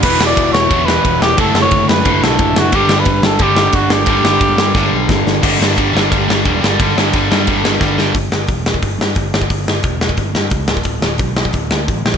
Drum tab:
CC |x---------------|----------------|----------------|----------------|
RD |----x---x---x---|x---x---x---x---|x---x---x---x---|x---x-----------|
HH |----------------|----------------|----------------|----------------|
SD |--o---o---o---o-|--o---o---o---o-|--o---o---o---o-|--o---o-o---o-o-|
BD |o---o---o---o---|o---o---o---o---|o---o---o---o---|o---o---o---o---|

CC |x---------------|----------------|----------------|----------------|
RD |----x---x---x---|x---x---x-------|----------------|----------------|
HH |----------------|----------------|o---o---o---o---|o---o---o---o---|
SD |--o---o---o---o-|--o---o---o-o-o-|--o---o---o---o-|--o---o---o---o-|
BD |o---o---o---o---|o---o---o---o---|o---o--oo---o--o|o---o--oo---o--o|

CC |----------------|
RD |----------------|
HH |o---o---o---o---|
SD |--o---o---o---o-|
BD |o---o--oo---o--o|